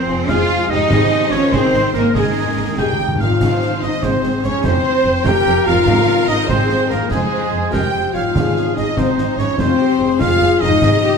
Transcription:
Already playing: harp F2 G#3 F4 C5, french horn section F3, cello section C4, violin section C5, flute section C5, viola section C5
0.08 double bass section F1, viola section C4, violin section G#4
0.29 double bass section F1, french horn section G#3, cello section F4, viola section G#4, oboe F5, clarinet F5, flute section F5, violin section F5, concert bass drum, snare
0.49 double bass section F1, viola section F4
0.70 double bass section F1, harp G#2, viola section C4, cello section D#4, french horn section G4, clarinet D#5, oboe D#5, flute section D#5, violin section D#5
0.77 harp G#3
0.82 harp D#4
0.86 double bass section G#1, timpani G#2, harp C5
0.91 viola section G#4 C5, violin section C5, concert bass drum, snare, crash
1.11 violin section G#4, snare
1.31 double bass section G#1, french horn section F3, viola section C4, cello section C#4, violin section A#4 C#5, oboe C#5, clarinet C#5, flute section C#5, snare
1.52 double bass section G#1, french horn section D#3, cello section C4, viola section G#4, oboe C5, clarinet C5, violin section C5, flute section C5, concert bass drum, snare
1.73 double bass section G#1, viola section D#4, snare
1.93 double bass section G#1, french horn section C#3, cello section A#3, viola section C4, clarinet A#4, flute section A#4, violin section A#4, oboe A#4, snare
1.98 harp G#2
2.02 harp G#3
2.07 harp D#4
2.11 timpani G#2, clarinet G#4, oboe G#4, harp A#4, concert bass drum, snare
2.15 double bass section G#1, french horn section D#3, cello section G#3, violin section G#4 D#5, viola section G#4 A#4, flute section G#4
2.23 timpani G#2
2.30 timpani G#2
2.38 timpani G#2
2.45 timpani G#2
2.53 timpani G#2
2.58 double bass section G#1, timpani G#2, viola section A#3
2.69 timpani G#2
2.77 double bass section G#1, timpani G#2, french horn section G4, viola section G#4, oboe G5, violin section G5, flute section G5, concert bass drum, snare
2.85 timpani G#2
2.93 timpani G#2
3.00 double bass section G#1, timpani G#2, viola section D#4
3.08 timpani G#2
3.15 timpani G#2
3.20 double bass section G#1, timpani G#2, viola section A#3, french horn section F4, violin section F5, oboe F5, flute section F5
3.24 harp G#2
3.29 timpani G#2, harp G#3
3.33 harp D#4
3.37 timpani G#2, harp C5, viola section C5, concert bass drum, snare, crash
3.41 double bass section G#1, cello section G#2
3.62 snare
3.82 double bass section G#1, cello section G#2, french horn section D#4, violin section D#5, oboe D#5, flute section D#5, snare
4.03 double bass section G#1, cello section G#2, french horn section C4, viola section G#4, oboe C5, violin section C5, flute section C5, concert bass drum, snare
4.23 double bass section G#1, cello section G#2, snare
4.44 double bass section G#1, harp F2, cello section G#2, french horn section C#4, violin section C#5, oboe C#5, flute section C#5, snare
4.52 harp G#3
4.56 harp F4
4.61 double bass section F1, harp C5, violin section C5, oboe C5, concert bass drum, snare
4.65 cello section F2, french horn section C4, viola section C5, flute section C5, violin section C5
5.05 double bass section F1, cello section F2
5.25 double bass section F1, cello section F2, french horn section G4, viola section A#4, violin section G5, oboe G5, flute section G5, concert bass drum, snare
5.46 double bass section F1, cello section F2
5.67 double bass section F1, cello section F2, harp G#2, french horn section F4, violin section F5, oboe F5, flute section F5
5.74 harp G#3
5.79 harp D#4
5.83 harp C5, concert bass drum, snare, crash
5.87 double bass section G#1, timpani G#2, cello section G#2
6.08 snare
6.28 double bass section G#1, cello section G#2, french horn section D#4, violin section D#5, flute section D#5, oboe D#5, snare
6.48 double bass section G#1, cello section G#2, french horn section C4, viola section G#4, flute section C5, violin section C5, oboe C5, concert bass drum, snare
6.70 double bass section G#1, cello section G#2, snare
6.89 double bass section G#1, cello section G#2, french horn section A#3, flute section A#4, oboe A#4, violin section A#4, snare
6.93 harp F2
6.98 harp G#3
7.02 harp F4
7.07 violin section G#4, harp C5, viola section C5
7.11 double bass section F1, cello section F2, french horn section G#3, oboe G#4, violin section G#4, flute section G#4, concert bass drum, snare
7.53 double bass section F1, cello section F2
7.72 double bass section F1, cello section F2, french horn section G4, clarinet A#4, flute section G5, violin section G5, oboe G5, concert bass drum, snare
7.93 double bass section F1, cello section F2, clarinet C5
8.14 double bass section F1, cello section F2, french horn section F4, clarinet C#5, violin section F5, flute section F5, oboe F5
8.18 harp G#2
8.23 harp G#3
8.27 harp D#4
8.32 timpani G#2, cello section G#2, viola section G#4, harp C5, concert bass drum, snare, crash
8.37 double bass section G#1
8.56 snare
8.76 double bass section G#1, cello section G#2, french horn section D#4, violin section D#5, flute section D#5, oboe D#5, snare
8.96 double bass section G#1, cello section G#2, french horn section C4, viola section D#4, flute section C5, violin section C5, oboe C5, concert bass drum, snare
9.18 double bass section G#1, cello section G#2, snare
9.37 double bass section G#1, cello section G#2, french horn section C#4, violin section C#5, oboe C#5, flute section C#5, snare
9.42 harp F2
9.47 harp G#3
9.51 harp F4
9.56 double bass section F1, cello section F2, french horn section C4, viola section F4, harp C5, violin section C5, flute section C5, oboe C5, concert bass drum, snare
9.80 viola section G4
10.00 double bass section F1, cello section F2, viola section G#4
10.20 double bass section F1, cello section F2, french horn section F4, oboe F5, violin section F5, flute section F5, concert bass drum, snare
10.41 double bass section F1, cello section F2
10.61 double bass section F1, cello section F2, french horn section D#4, violin section D#5, oboe D#5, flute section D#5
10.65 harp G#2
10.69 harp G#3
10.74 harp D#4
10.78 cello section G#2, viola section G#4, harp C5, concert bass drum, snare, crash
10.83 double bass section G#1
11.03 viola section G4, snare

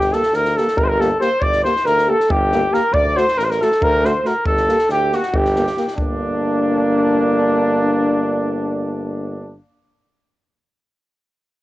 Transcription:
Already playing: tuba G1, flugelhorn G4, trumpet G4
0.01 snare
0.12 trombone A#3, euphonium G4, flugelhorn A4, trumpet A4, snare
0.23 snare
0.32 tuba D2, flugelhorn A#4, trumpet A#4, snare
0.45 snare
0.56 trombone A#3, euphonium G4, flugelhorn A4, trumpet A4, snare
0.68 snare
0.76 tuba G1, trumpet A#4, flugelhorn A#4, kick
0.84 trumpet C5, flugelhorn C5
0.88 trumpet A#4, flugelhorn A#4
0.99 trombone A#3, euphonium G4, trumpet A4, flugelhorn A4, snare
1.19 trombone A#3, euphonium G4, trumpet C5, flugelhorn C5, snare
1.40 tuba G1, flugelhorn D5, trumpet D5, kick
1.52 snare
1.64 trombone A#3, euphonium G4, trumpet C5, flugelhorn C5, snare
1.76 snare
1.84 tuba D2, flugelhorn A#4, trumpet A#4, snare
1.98 snare
2.07 trombone A#3, euphonium G4, flugelhorn A4, trumpet A4
2.20 snare
2.29 tuba G1, trumpet G4, flugelhorn G4, kick
2.52 trombone A#3, euphonium G4, snare
2.72 trombone A#3, euphonium G4, flugelhorn A#4, trumpet A#4, snare
2.92 tuba D2, trumpet D5, flugelhorn D5, kick
3.16 trombone A3, euphonium F#4, trumpet C5, flugelhorn C5, snare
3.28 snare
3.37 tuba A1, trumpet A#4, flugelhorn A#4, snare
3.44 trumpet C5, flugelhorn C5
3.50 trumpet A#4, flugelhorn A#4, snare
3.61 trombone A3, euphonium F#4, trumpet A4, flugelhorn A4, snare
3.72 snare
3.81 tuba D2, trumpet A#4, flugelhorn A#4, kick
4.04 trombone A3, euphonium F#4, flugelhorn C5, trumpet C5, snare
4.24 trombone A3, euphonium F#4, flugelhorn A#4, trumpet A#4, snare
4.45 tuba G1, flugelhorn A4, trumpet A4, kick
4.57 snare
4.68 trombone A#3, euphonium G4, snare
4.79 snare
4.89 tuba D2, trumpet G4, flugelhorn G4, snare
5.12 trombone A#3, trumpet F#4, flugelhorn F#4, euphonium G4, snare
5.23 snare
5.33 tuba G1, trumpet G4, kick
5.37 flugelhorn G4
5.45 snare
5.56 trombone A#3, euphonium G4, snare
5.67 snare
5.76 trombone A#3, euphonium G4, snare
5.88 snare
5.96 tuba G1, trombone A#3, trumpet D4, euphonium D4, flugelhorn D4, kick

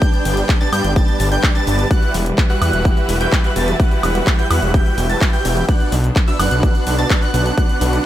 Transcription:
Already playing: string section G3 B3 D4
0.02 supersaw synth D4 G4 B4 D5 G5, digital synth lead G6, kick, closed hi-hat, shaker
0.14 closed hi-hat, shaker
0.25 detuned saw bass G1, open hi-hat, shaker
0.37 closed hi-hat, shaker
0.49 kick, clap, closed hi-hat, shaker
0.61 supersaw synth D4 G4 B4 D5 A5, digital synth lead A6, closed hi-hat, shaker
0.72 detuned saw bass G2, supersaw synth D4 G4 B4 D5 G5, digital synth lead G6, open hi-hat, high woodblock, shaker
0.84 detuned saw bass G1, closed hi-hat, shaker
0.96 supersaw synth D4 G4 B4 D5 A5, digital synth lead A6, kick, closed hi-hat, shaker
1.08 closed hi-hat, shaker
1.20 detuned saw bass G1, open hi-hat, shaker
1.32 supersaw synth D4 G4 B4 D5 G5, digital synth lead G6, closed hi-hat, shaker
1.43 kick, clap, closed hi-hat, shaker
1.55 supersaw synth D4 G4 B4 D5 A5, digital synth lead A6, closed hi-hat, shaker
1.67 detuned saw bass G1, open hi-hat, shaker
1.79 closed hi-hat, shaker
1.91 string section E3 E4 B4, supersaw synth F#4 G4 B4 E5 F#5, digital synth lead F#6, kick, closed hi-hat, shaker
2.03 closed hi-hat, shaker
2.14 detuned saw bass E1, open hi-hat, shaker
2.26 closed hi-hat, shaker
2.38 kick, clap, closed hi-hat, shaker
2.50 supersaw synth F#4 G4 B4 E5 F#5, digital synth lead F#6, closed hi-hat, shaker
2.62 detuned saw bass E2, supersaw synth F#4 G4 B4 E5 F#5, digital synth lead F#6, open hi-hat, high woodblock, shaker
2.73 detuned saw bass E1, closed hi-hat, shaker
2.85 kick, closed hi-hat, shaker
2.97 closed hi-hat, shaker
3.09 detuned saw bass E1, open hi-hat, shaker
3.21 supersaw synth F#4 G4 B4 E5 G5, digital synth lead G6, closed hi-hat, shaker
3.32 kick, clap, closed hi-hat, shaker
3.44 supersaw synth F#4 G4 B4 E5 F#5, digital synth lead F#6, closed hi-hat, shaker
3.56 detuned saw bass E1, supersaw synth F#4 G4 B4 E5 A5, digital synth lead A6, open hi-hat, shaker
3.68 closed hi-hat, shaker
3.80 supersaw synth F#4 G4 B4 F#5, digital synth lead F#6, kick, closed hi-hat, shaker
3.91 closed hi-hat, shaker
4.03 detuned saw bass E1, open hi-hat, high woodblock, shaker
4.15 closed hi-hat, shaker
4.27 kick, clap, closed hi-hat, shaker
4.39 supersaw synth F#4 G4 B4 E5 G5, digital synth lead G6, closed hi-hat, shaker
4.50 detuned saw bass E2, supersaw synth F#4 G4 B4 E5 F#5, digital synth lead F#6, open hi-hat, high woodblock, shaker
4.62 detuned saw bass E1, closed hi-hat, shaker
4.74 supersaw synth F#4 G4 B4 E5 G5, digital synth lead G6, kick, closed hi-hat, shaker
4.86 closed hi-hat, shaker
4.98 detuned saw bass E1, open hi-hat, shaker
5.10 supersaw synth F#4 G4 B4 E5 A5, digital synth lead A6, closed hi-hat, shaker
5.21 kick, clap, closed hi-hat, shaker
5.33 supersaw synth F#4 G4 B4 E5 G5, digital synth lead G6, closed hi-hat, shaker
5.45 detuned saw bass E1, open hi-hat, shaker
5.57 closed hi-hat, shaker
5.68 string section B3 D4, supersaw synth D4 F#4 B4 D5 F#5, digital synth lead F#6, kick, closed hi-hat, shaker
5.80 closed hi-hat, shaker
5.92 detuned saw bass B1, open hi-hat, shaker
6.04 closed hi-hat, shaker
6.16 kick, clap, closed hi-hat, shaker
6.28 supersaw synth D4 F#4 B4 D5 E5, digital synth lead E6, closed hi-hat, shaker
6.39 detuned saw bass F#1, supersaw synth D4 F#4 B4 D5 F#5, digital synth lead F#6, open hi-hat, high woodblock, shaker
6.51 detuned saw bass B1, closed hi-hat, shaker
6.63 kick, closed hi-hat, shaker
6.75 closed hi-hat, shaker
6.87 detuned saw bass B1, open hi-hat, shaker
6.98 supersaw synth D4 F#4 B4 D5 A5, digital synth lead A6, closed hi-hat, shaker
7.10 kick, clap, closed hi-hat, shaker
7.22 supersaw synth D4 F#4 B4 D5 F#5, digital synth lead F#6, closed hi-hat, shaker
7.34 detuned saw bass B1, supersaw synth D4 F#4 B4 D5 F#5, digital synth lead F#6, open hi-hat, shaker
7.46 closed hi-hat, shaker
7.57 supersaw synth D4 F#4 B4 D5 F#5, digital synth lead F#6, kick, closed hi-hat, shaker
7.69 closed hi-hat, shaker
7.81 detuned saw bass B1, open hi-hat, shaker
7.93 closed hi-hat, shaker

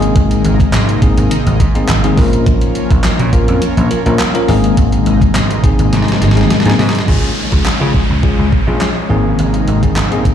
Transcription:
Already playing: analog synth pad C3 D#3 G#3 A#3 D#4, tine electric piano G#3 A#3 C4 D#4 G#4
0.02 closed hi-hat
0.16 slap bass G#1, kick, closed hi-hat
0.31 closed hi-hat
0.45 slap bass G#1, closed hi-hat
0.60 kick, closed hi-hat
0.73 slap bass G#2, snare, clap, closed hi-hat
0.89 closed hi-hat
1.02 tine electric piano G#3 A#3 C4 D#4 G#4, kick, closed hi-hat
1.17 slap bass G#1, closed hi-hat
1.31 closed hi-hat
1.46 slap bass G#1, closed hi-hat
1.60 slap bass G#2, tine electric piano D#4 G#4, kick, closed hi-hat
1.75 tine electric piano G#3 A#3 C4 D#4 G#4, closed hi-hat
1.89 slap bass G#1, snare, clap, closed hi-hat
2.04 tine electric piano G#3 A#3 C4 D#4 G#4, closed hi-hat
2.18 slap bass A#1, tine electric piano F3 A#3 C#4 F4 A#4, analog synth pad F3 A#3 C#4, kick, open hi-hat
2.33 closed hi-hat
2.46 kick, closed hi-hat
2.61 closed hi-hat
2.75 closed hi-hat
2.91 slap bass A#1, kick, closed hi-hat
3.04 muted slap bass stroke, snare, clap, closed hi-hat
3.19 slap bass A#2, closed hi-hat
3.33 tine electric piano F3 A#3 C#4 F4 A#4, kick, closed hi-hat
3.48 slap bass F2, closed hi-hat
3.62 closed hi-hat
3.77 slap bass A#1, closed hi-hat
3.90 tine electric piano F4 A#4, closed hi-hat
4.06 slap bass A#1, tine electric piano F3 A#3 C#4 F4 A#4, closed hi-hat
4.19 snare, clap, closed hi-hat
4.34 tine electric piano F3 A#3 C#4 F4 A#4, closed hi-hat
4.48 slap bass G#1, analog synth pad C3 D#3 G#3 D#4, tine electric piano G#3 A#3 C4 D#4 G#4, open hi-hat
4.64 closed hi-hat
4.77 slap bass G#1, kick, closed hi-hat
4.92 closed hi-hat
5.06 slap bass G#1, closed hi-hat
5.21 kick, closed hi-hat
5.35 slap bass G#2, snare, clap, closed hi-hat
5.51 closed hi-hat
5.64 tine electric piano G#3 A#3 C4 D#4 G#4, kick, closed hi-hat
5.79 slap bass G#1, closed hi-hat
5.93 slap bass G#2, snare, closed hi-hat
6.02 snare
6.08 snare, closed hi-hat
6.21 slap bass G#1, tine electric piano D#4 G#4, snare, closed hi-hat
6.31 snare
6.36 tine electric piano G#3 A#3 C4 D#4 G#4, closed hi-hat
6.41 snare
6.50 muted slap bass stroke, snare, closed hi-hat
6.60 snare
6.65 slap bass G#2, tine electric piano G#3 A#3 C4 D#4 G#4, closed hi-hat
6.70 snare
6.79 slap bass G#2, snare, open hi-hat
6.89 snare
6.95 snare, closed hi-hat
7.08 slap bass C#2, analog synth pad F3 G#3 C#4, tine electric piano G#3 C#4 F4 G#4, kick, crash, downlifter
7.52 slap bass C#2, tine electric piano G#3 C#4 F4 G#4, kick
7.66 muted slap bass stroke, snare, clap
7.81 slap bass C#3, tine electric piano G#3 C#4 F4 G#4
7.94 kick
8.10 slap bass C#2
8.23 tine electric piano G#3 C#4 F4 G#4, kick
8.39 slap bass C#2
8.52 kick
8.67 slap bass A#1, tine electric piano G#3 C#4 F4 G#4
8.81 snare, clap
9.10 slap bass G#1, analog synth pad C3 D#3 A#3 D#4, tine electric piano A#3 C4 D#4 G#4
9.39 slap bass G#1, closed hi-hat
9.54 closed hi-hat
9.68 slap bass G#1, closed hi-hat
9.83 tine electric piano A#3 C4 D#4 G#4, kick, closed hi-hat
9.96 slap bass G#2, snare, clap, closed hi-hat
10.12 tine electric piano A#3 C4 D#4 G#4, closed hi-hat
10.25 kick, closed hi-hat

